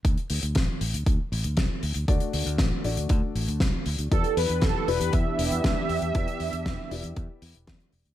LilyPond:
<<
  \new Staff \with { instrumentName = "Analog polysynth" } { \time 4/4 \key d \mixolydian \tempo 4 = 118 r1 | r1 | a'8 b'8 a'8 b'8 e''2~ | e''2. r4 | }
  \new Staff \with { instrumentName = "Grand piano" } { \time 4/4 \key d \mixolydian r1 | <a d' fis' d''>4. <a d' fis' d''>2~ <a d' fis' d''>8 | <b e' g' d''>4. <b e' g' d''>2~ <b e' g' d''>8 | <b e' g' d''>4. <b e' g' d''>2~ <b e' g' d''>8 | }
  \new Staff \with { instrumentName = "Analog synth pad" } { \time 4/4 \key d \mixolydian r1 | r1 | <e b d' g'>1~ | <e b d' g'>1 | }
  \new Staff \with { instrumentName = "Fingered electric bass" } { \clef bass \time 4/4 \key d \mixolydian d,16 r16 d,16 d,16 a,,16 r16 a,,16 d,16 d,16 r16 a,,16 d,16 c,16 r16 d,16 d,16 | d,16 r16 d,16 d,16 a,,16 r16 a,,16 d,16 d,16 r16 a,,16 d,16 c,16 r16 d,16 d,16 | e,16 r16 e,16 e,16 e,,16 r16 e,,16 e,16 e,16 r16 e,,16 e,16 d,16 r16 e,16 e,16 | e,16 r16 e,16 e,16 e,,16 r16 e,,16 e,16 e,16 r16 e,16 r16 e,16 r16 e,,16 d,16 | }
  \new DrumStaff \with { instrumentName = "Drums" } \drummode { \time 4/4 <hh bd>16 hh16 hho16 hh16 <hh bd sn>8 hho16 hh16 <hh bd>8 hho16 hh16 <hh bd sn>8 hho16 hh16 | <hh bd>16 hh16 hho16 hh16 <hh bd sn>8 hho16 hh16 <hh bd>8 hho16 hh16 <hh bd sn>8 hho16 hh16 | <hh bd>16 hh16 hho16 hh16 <hh bd sn>8 hho16 hh16 <hh bd>8 hho16 hh16 <hh bd sn>8 hho16 hh16 | <hh bd>16 hh16 hho16 hh16 <hh bd sn>8 hho16 hh16 <hh bd>8 hho16 hh16 <hh bd sn>16 hh16 hho16 hh16 | }
>>